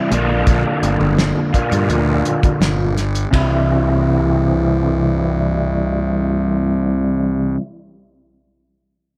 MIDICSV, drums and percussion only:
0, 0, Header, 1, 2, 480
1, 0, Start_track
1, 0, Tempo, 715137
1, 314, Time_signature, 4, 2, 24, 8
1, 6160, End_track
2, 0, Start_track
2, 0, Title_t, "Drums"
2, 78, Note_on_c, 9, 42, 51
2, 145, Note_off_c, 9, 42, 0
2, 314, Note_on_c, 9, 42, 48
2, 316, Note_on_c, 9, 36, 84
2, 382, Note_off_c, 9, 42, 0
2, 383, Note_off_c, 9, 36, 0
2, 557, Note_on_c, 9, 42, 48
2, 624, Note_off_c, 9, 42, 0
2, 796, Note_on_c, 9, 38, 95
2, 796, Note_on_c, 9, 42, 49
2, 863, Note_off_c, 9, 38, 0
2, 863, Note_off_c, 9, 42, 0
2, 1034, Note_on_c, 9, 36, 70
2, 1035, Note_on_c, 9, 42, 47
2, 1101, Note_off_c, 9, 36, 0
2, 1102, Note_off_c, 9, 42, 0
2, 1154, Note_on_c, 9, 42, 49
2, 1222, Note_off_c, 9, 42, 0
2, 1272, Note_on_c, 9, 42, 49
2, 1340, Note_off_c, 9, 42, 0
2, 1512, Note_on_c, 9, 42, 51
2, 1579, Note_off_c, 9, 42, 0
2, 1632, Note_on_c, 9, 42, 50
2, 1633, Note_on_c, 9, 36, 78
2, 1699, Note_off_c, 9, 42, 0
2, 1700, Note_off_c, 9, 36, 0
2, 1756, Note_on_c, 9, 38, 93
2, 1756, Note_on_c, 9, 42, 54
2, 1823, Note_off_c, 9, 38, 0
2, 1823, Note_off_c, 9, 42, 0
2, 1997, Note_on_c, 9, 38, 24
2, 1997, Note_on_c, 9, 42, 50
2, 2064, Note_off_c, 9, 38, 0
2, 2064, Note_off_c, 9, 42, 0
2, 2116, Note_on_c, 9, 42, 45
2, 2183, Note_off_c, 9, 42, 0
2, 2234, Note_on_c, 9, 36, 47
2, 2238, Note_on_c, 9, 51, 64
2, 2301, Note_off_c, 9, 36, 0
2, 2305, Note_off_c, 9, 51, 0
2, 6160, End_track
0, 0, End_of_file